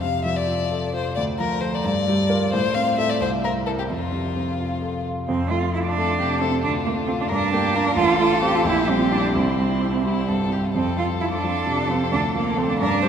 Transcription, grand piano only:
Already playing: F2
0.02 C3
0.25 F3
0.48 F4
0.71 A4
0.94 F4
1.17 D2
1.40 F3
1.63 F4 A4
1.84 G2
2.07 G3
2.29 F4 A#4
2.54 A2
2.76 C4
2.98 F4 A4
3.20 C2
3.44 C4
3.67 E4 A#4
3.90 F2
4.12 C3
4.37 C4
4.60 F4
4.82 A4
5.05 F4
5.28 F2
5.50 A3
5.75 F4
5.97 A3
6.20 C3
6.42 A3
6.64 D2
6.86 A3
7.08 F4 A4
7.30 G2
7.53 A#3
7.74 D4 F4
7.96 A1
8.20 A3
8.41 C4 F4
8.64 A#1
8.87 G3
9.12 D4 G4
9.35 C2
9.58 G3
9.82 E4
10.04 G3
10.29 G2
10.50 G3
10.74 F2
10.98 F3
11.22 F4
11.44 F3
11.67 C3
11.89 F3
12.12 D2
12.35 F3
12.57 F4 A4
12.80 G2
13.03 G3

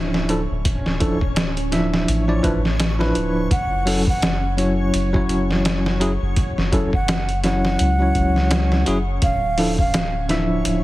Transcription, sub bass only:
Already playing: D1
0.51 D1
0.86 D1
2.08 A1
2.44 A1
3.16 D1
3.51 F#1
4.94 F#1
6.22 F#1
6.58 F#1
7.80 C#2
8.15 C#2
8.88 F#1
9.22 D1
10.66 D1

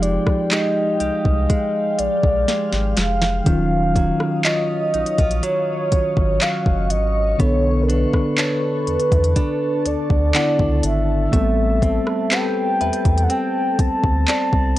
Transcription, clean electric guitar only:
Already playing: F3 C4
0.02 G#3
0.51 G#3 D#4 G4
1.00 G4
1.50 G#3
2.48 G#3
3.46 D#3
3.96 F#3
4.45 F#3 C#4 F4
4.94 D#4
5.18 F4
5.43 F#3
6.41 F#3
7.40 B3
7.89 D4
8.38 D4 A4 C#5
9.36 D4
10.34 D4
11.33 A3
11.82 C4
12.31 C4 G4 B4
12.81 B4
13.30 C4
14.28 C4

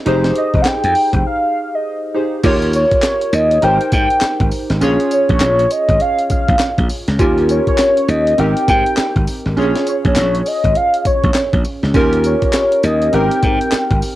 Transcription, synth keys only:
0.06 D#4 G4 G#4 C5
2.14 D#4 G4 G#4 C5
2.43 F4 G4 A#4 C#5
3.62 D#4 G4 A#4 C5
4.81 C#4 F4 G#4 C#5
7.19 C#4 F4 G4 A#4
8.38 C4 D#4 G4 A#4
9.56 C#4 F4 G#4 C#5
11.94 C#4 F4 G4 A#4
13.13 C4 D#4 G4 A#4

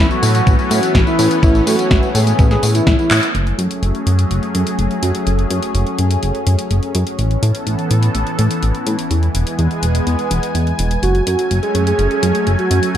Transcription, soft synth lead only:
0.11 F#4
0.35 F#4
0.59 F#4
1.07 E4
1.43 E4
1.67 F#4
2.15 G#4
2.51 G#4
2.75 E4
2.99 E4
11.03 F#4
11.27 F#4
11.63 G#4
11.87 G#4
12.11 G#4
12.59 F#4

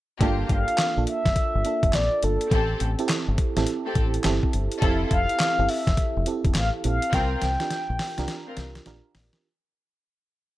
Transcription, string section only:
0.20 A#3 F4 G4
2.51 C4 G4 A4
3.85 C4 G4 A4
4.82 E4 F4 A4
7.12 C4 F4 A#4
8.46 C4 F4 A#4

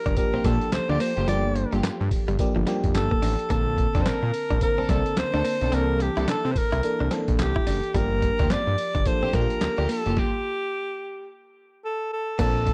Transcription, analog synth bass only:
0.06 G1
0.34 A#1
0.45 A#1
0.72 D2
0.89 D2
1.17 F#1
1.28 G1
1.73 G1
1.84 G2
2.01 G2
2.28 G1
2.56 G1
2.84 F1
2.95 G1
3.22 A1
3.50 A#1
3.95 F2
4.06 A#2
4.23 A#2
4.50 A#1
4.78 C2
4.89 C2
5.17 D2
5.34 D2
5.62 B1
5.73 C2
6.17 C2
6.28 C3
6.45 C3
6.73 C2
7.01 C2
7.28 A#1
7.39 C2
7.67 F#1
7.95 G1
8.39 D2
8.50 G2
8.67 G2
8.95 G1
9.23 A#1
9.33 A#1
9.62 D2
9.78 D2
10.06 F#1
12.39 A#1

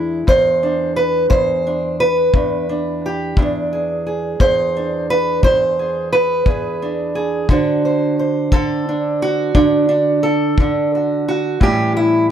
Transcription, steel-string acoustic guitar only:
Already playing: E2 G#3 D4 E4
0.27 E2 C5
0.63 D4
0.96 B4
1.30 E2 C5
1.67 D4
2.00 B4
2.34 E2 D4
2.69 D4
3.06 G4
3.38 E2 D4
3.73 G#4
4.07 G#4
4.40 E2 C5
4.77 D4
5.10 B4
5.44 E2 C5
5.79 G#4
6.13 B4
6.46 E2 G#4
6.82 D4
7.15 G#4
7.50 D3 D4 F#4 C5
7.85 C5
8.19 C5
8.52 D3 A4
8.89 D4
9.22 F#4
9.55 D3 D4
9.89 D4
10.23 A4
10.59 D3 D4
10.95 F#4
11.28 F#4
11.60 A2 E3 G3 C#4 G4
11.97 E4

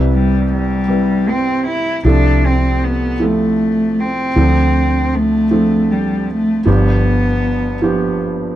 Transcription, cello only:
0.13 G3
0.52 G3
1.29 C4
1.67 E4
2.07 D4
2.45 C4
2.84 B3
3.23 A3
4.00 C4
5.15 A3
5.91 G3
6.30 A3
6.69 B3

